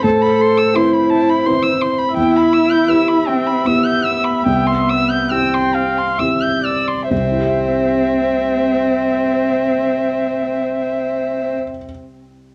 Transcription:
X:1
M:3/4
L:1/16
Q:1/4=69
K:C
V:1 name="Violin"
a b c' e' c' b a b c' e' c' b | g b e' g' e' b g b e' g' e' b | g c' e' g' e' c' g c' e' g' e' c' | e12- |
e12 |]
V:2 name="Viola"
c12 | e12- | e4 g2 f2 e2 d2 | c12- |
c12 |]
V:3 name="Felt piano"
A,,4 [CEB]4 [CEB]4 | E,,4 [EGB]4 [B,EG]4 | C,,4 [CEG]4 [CEG]4 | [C,,C,CEGe]12- |
[C,,C,CEGe]12 |]
V:4 name="Cello"
A4 E6 z2 | E6 C2 B,4 | B,4 C4 z4 | C12- |
C12 |]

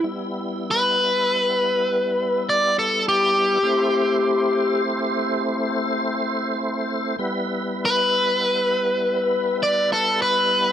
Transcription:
X:1
M:12/8
L:1/8
Q:3/8=67
K:Em
V:1 name="Overdriven electric guitar"
z2 B6 d A G2- | G4 z8 | z2 B6 d A B2 |]
V:2 name="Tonewheel organ"
[G,B,E]12 | [A,CEc]12 | [G,B,EB]12 |]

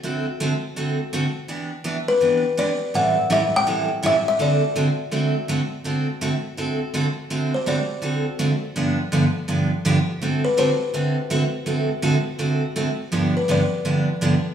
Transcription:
X:1
M:4/4
L:1/16
Q:"Swing" 1/4=165
K:Dmix
V:1 name="Kalimba"
z16 | z6 B4 z2 d4 | f4 e2 g6 e2 e2 | d16- |
d12 z4 | z2 c2 d2 z8 z2 | z16 | z2 B2 c2 z8 z2 |
z16 | z2 B2 d2 z8 z2 |]
V:2 name="Steel-string acoustic guitar"
[D,A,CFA]2 z2 [D,A,CFA] z3 [D,A,CFA]2 z2 [D,A,CFA] z3 | [E,B,DG]2 z2 [E,B,DG] z3 [E,B,DG]2 z2 [E,B,DG] z3 | [A,,E,G,^CEA]2 z2 [A,,E,G,CEA] z3 [A,,E,G,CEA]2 z2 [A,,E,G,CEA] z3 | [D,A,CFA]2 z2 [D,A,CFA] z3 [D,A,CFA]2 z2 [D,A,CFA] z3 |
[D,A,CFA]2 z2 [D,A,CFA] z3 [D,A,CFA]2 z2 [D,A,CFA] z3 | [D,A,CFA]2 z2 [D,A,CFA] z3 [D,A,CFA]2 z2 [D,A,CFA] z3 | [G,,D,=F,B,DG]2 z2 [G,,D,F,B,DG] z3 [G,,D,F,B,DG]2 z2 [G,,D,F,B,DG] z3 | [D,A,CFA]2 z2 [D,A,CFA] z3 [D,A,CFA]2 z2 [D,A,CFA] z3 |
[D,A,CFA]2 z2 [D,A,CFA] z3 [D,A,CFA]2 z2 [D,A,CFA] z3 | [G,,D,=F,B,DG]2 z2 [G,,D,F,B,DG] z3 [G,,D,F,B,DG]2 z2 [G,,D,F,B,DG] z3 |]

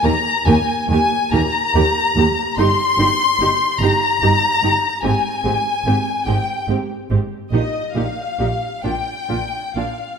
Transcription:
X:1
M:6/8
L:1/8
Q:3/8=48
K:Eb
V:1 name="Violin section"
b a a b3 | c'3 b3 | a3 g z2 | e f2 g2 f |]
V:2 name="Violin section"
b a a b3 | c'3 b3 | a3 g z2 | e f2 g2 f |]
V:3 name="Viola section"
[B,G] [B,G] [B,G] [B,G] [B,G] [B,G] | [EG] [EG] [EG] [EG] [EG] [EG] | [CG] [CG] [CG] [CG] [CG] [CG] | [EG] [EG] [EG] [DF] [DF] [DF] |]
V:4 name="Cello section" clef=bass
E,, E,, E,, E,, E,, E,, | G,, G,, G,, G,, G,, G,, | A,, A,, A,, A,, A,, A,, | B,, B,, B,, B,, B,, B,, |]
V:5 name="Double bass section" clef=bass
E,, E,, E,, E,, E,, E,, | G,,, G,,, G,,, G,,, G,,, G,,, | A,,, A,,, A,,, A,,, A,,, A,,, | B,,, B,,, B,,, B,,, B,,, B,,, |]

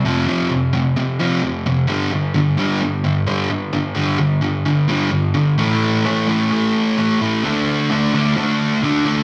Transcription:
X:1
M:4/4
L:1/8
Q:1/4=130
K:Am
V:1 name="Distorted electric guitar" clef=bass
[F,,C,F,] [F,,C,F,] [F,,C,] [F,,C,] [F,,C,] [F,,C,F,] [F,,C,] [F,,C,] | [G,,D,G,] [G,,D,] [G,,D,] [G,,D,G,] [G,,D,] [G,,D,] [G,,D,G,] [G,,D,] | [G,,D,] [G,,D,G,] [G,,D,] [G,,D,] [G,,D,] [G,,D,G,] [G,,D,] [G,,D,] | [A,,E,A,]2 [A,,E,A,] [A,,E,A,] [A,,E,A,]2 [A,,E,A,] [A,,E,A,] |
[D,A,D]2 [D,A,D] [D,A,D] [D,A,D]2 [D,A,D] [D,A,D] |]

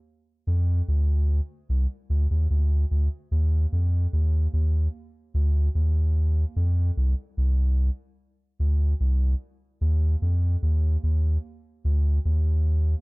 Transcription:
X:1
M:4/4
L:1/16
Q:1/4=74
K:Fdor
V:1 name="Sub bass" clef=bass
z2 F,,2 D,,3 z C,, z D,, E,, D,,2 D,, z | E,,2 F,,2 E,,2 E,,2 z2 D,,2 E,,4 | F,,2 C,, z C,,3 z3 D,,2 C,,2 z2 | E,,2 F,,2 E,,2 E,,2 z2 D,,2 E,,4 |]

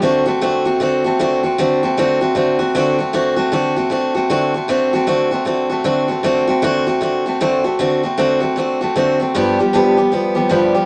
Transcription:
X:1
M:4/4
L:1/8
Q:"Swing" 1/4=155
K:Dmix
V:1 name="Steel-string acoustic guitar"
[D,A,CF] [A,CF] [D,A,CF] [A,CF] [D,A,CF] [A,CF] [D,A,CF] [A,CF] | [D,A,CF] [A,CF] [D,A,CF] [A,CF] [D,A,CF] [A,CF] [D,A,CF] [A,CF] | [D,A,CF] [A,CF] [D,A,CF] [A,CF] [D,A,CF] [A,CF] [D,A,CF] [A,CF] | [D,A,CF] [A,CF] [D,A,CF] [A,CF] [D,A,CF] [A,CF] [D,A,CF] [A,CF] |
[D,A,CF] [A,CF] [D,A,CF] [A,CF] [D,A,CF] [A,CF] [D,A,CF] [A,CF] | [D,A,CF] [A,CF] [D,A,CF] [A,CF] [D,A,CF] [A,CF] [D,A,CF] [A,CF] | [G,,D,=F,G,B,G] [F,G,B,G] [G,,D,F,G,B,G] [F,G,B,G] [F,G,B,G] [F,G,B,G] [G,,D,F,G,B,G] [F,G,B,G] |]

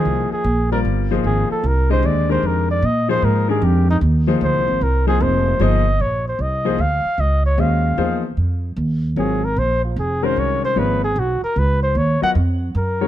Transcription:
X:1
M:3/4
L:1/8
Q:"Swing" 1/4=151
K:Fdor
V:1 name="Muted trumpet"
A A2 B z2 | A =A B c d c | B d e c B A | G E z2 c2 |
B A c2 e2 | [K:Bbm] d c e2 f2 | e d f3 z | z4 A B |
c F A c d c | _c A G B c =c | d g z2 B2 |]
V:2 name="Grand piano"
[F,B,EAc]2 z [G,CFBd]2 [F,B,EAc]- | [F,B,EAc]2 z [D,A,Gce]2 [E,A,DGB]- | [E,A,DGB]2 z [F,B,EAc]2 [E,A,DGB]- | [E,A,DGB]2 z [F,B,EAc]3 |
z [F,B,EAc]3 [F,B,EAc] z | [K:Bbm] z3 [F,B,EAc] z2 | z2 [A,DGce]2 [F,B,EAc] z | z4 [G,CFBd] z |
z3 [E,A,DGB]3 | [F,B,EAd] z4 z | z [G,_CFBe] z3 [E,A,DGd] |]
V:3 name="Upright bass" clef=bass
C,, z B,,,2 G,,,2 | A,,, z C,,2 E,,2 | F,,2 B,,2 A,,2 | F,,2 E,,2 (3D,, C,, A,,, |
C,,2 F,,,2 G,,,2 | [K:Bbm] B,,,2 C,,2 =D,, z | D,,2 E,,2 =E,,2 | F,,2 E,,2 A,,,2 |
B,,,2 F,,,2 C,,2 | A,,,2 _C,, z D,,2 | E,, z F,,2 G,,2 |]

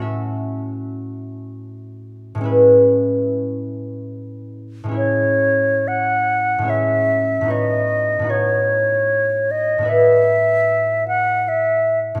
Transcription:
X:1
M:3/4
L:1/8
Q:1/4=75
K:A
V:1 name="Flute"
z6 | z6 | c2 f2 e2 | ^d2 c3 d |
e3 f e z |]
V:2 name="Harp"
[A,,A,CFe]6 | [A,,G,CEB]6 | [A,,G,CEc]4 [A,,G,CEc]2 | [A,,B,^DFc]2 [A,,B,DFc]4 |
[A,,B,EBc]6 |]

